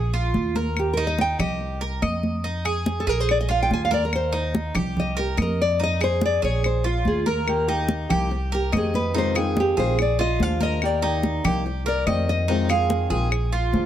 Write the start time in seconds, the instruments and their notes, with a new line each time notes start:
Already playing: upright bass A#1, cuban tres G#4
0.14 cuban tres F4, high conga
0.34 upright bass D#2, high conga
0.55 cuban tres A#4, high conga
0.77 nylon-string guitar G4, high conga, claves
0.93 cuban tres D#4, nylon-string guitar A#4, high conga
1.07 nylon-string guitar D#5
1.18 nylon-string guitar G5, high conga
1.39 upright bass C2, cuban tres G4, nylon-string guitar D#5, high conga, low conga, claves
1.61 high conga
1.81 cuban tres A#4, high conga
2.02 upright bass F2, cuban tres D#5, high conga, claves
2.23 high conga
2.44 cuban tres D#4, high conga
2.65 cuban tres G#4, high conga, claves
2.86 high conga
3.00 nylon-string guitar A4
3.07 upright bass A#1, cuban tres G#4, nylon-string guitar A#4
3.20 nylon-string guitar C5
3.29 nylon-string guitar D5, high conga, claves
3.41 nylon-string guitar D#5
3.49 cuban tres F4, nylon-string guitar F5, high conga
3.63 nylon-string guitar G5
3.70 upright bass D#2, nylon-string guitar G#5, high conga
3.85 nylon-string guitar F5
3.91 cuban tres A#4, nylon-string guitar D5, high conga
4.05 nylon-string guitar A#4
4.13 nylon-string guitar C5, high conga, claves
4.32 cuban tres D#4, high conga
4.55 high conga
4.75 upright bass C2, cuban tres G4, high conga, low conga, claves
4.97 nylon-string guitar D#5, high conga, low conga
5.17 nylon-string guitar G4, cuban tres A#4, high conga
5.37 upright bass F2, cuban tres D#5, high conga, claves
5.42 nylon-string guitar A#4
5.61 nylon-string guitar D5
5.80 cuban tres D#4, nylon-string guitar D#5, high conga
6.01 cuban tres G#4, nylon-string guitar C5, high conga, claves
6.21 high conga
6.25 nylon-string guitar D5
6.42 upright bass A#1, cuban tres G#4, nylon-string guitar C#5
6.63 nylon-string guitar C5, high conga, claves
6.84 cuban tres F4, nylon-string guitar F4, high conga
7.05 upright bass D#2, nylon-string guitar G#4, high conga
7.26 cuban tres A#4, nylon-string guitar A#4, high conga
7.47 nylon-string guitar D#3 A#3 D#4 G4, high conga, claves
7.68 nylon-string guitar A#3 D#4 G4, cuban tres D#4, high conga
7.88 high conga
8.09 upright bass C2, nylon-string guitar A#3 D#4 G4, cuban tres G4, high conga, low conga, claves
8.31 muted nylon-string guitar stroke, high conga
8.52 nylon-string guitar G4, cuban tres A#4, high conga
8.72 upright bass F2, nylon-string guitar D#3 A#3 C4 G4, cuban tres D#5, high conga, claves
8.77 nylon-string guitar G#4
8.94 nylon-string guitar B4, high conga
9.14 nylon-string guitar C3 D#3 G#3 C4 F4, cuban tres D#4, high conga
9.18 nylon-string guitar C5
9.35 nylon-string guitar D#3 G#3 C4 D#4 F4, cuban tres G#4, high conga, claves
9.57 nylon-string guitar G4, high conga
9.77 upright bass A#1, nylon-string guitar D#3 G#3 C4 F4 C5, cuban tres G#4
9.98 nylon-string guitar D5, muted nylon-string guitar stroke, high conga, claves
10.19 cuban tres F4, nylon-string guitar D#5, high conga
10.39 upright bass D#2, nylon-string guitar F3 G#3 D4 F4 F5, high conga
10.60 cuban tres A#4, nylon-string guitar D#5, high conga
10.82 nylon-string guitar D#3 A#3 D#4 G4 D5, high conga, claves
11.02 nylon-string guitar A#3 D#4 G4, cuban tres D#4, high conga
11.23 high conga
11.44 upright bass C2, nylon-string guitar A#3 D#4 G4, cuban tres G4, high conga, low conga, claves
11.66 muted nylon-string guitar stroke, high conga
11.86 cuban tres A#4, nylon-string guitar D5, high conga
12.06 upright bass F2, nylon-string guitar D#3 A#3 C4 G4, cuban tres D#5, high conga, claves
12.29 nylon-string guitar D#5
12.48 nylon-string guitar C3 D#3 G#3 C4 F4, cuban tres D#4, high conga
12.69 nylon-string guitar D#3 G#3 C4 F4 F5, cuban tres G#4, high conga, claves
12.90 high conga
13.10 upright bass A#1, nylon-string guitar D#3 G#3 C4 F4, cuban tres G#4
13.31 muted nylon-string guitar stroke, high conga, claves
13.52 cuban tres F4, high conga
13.73 upright bass D#2, nylon-string guitar F3 G#3 D4 F4, high conga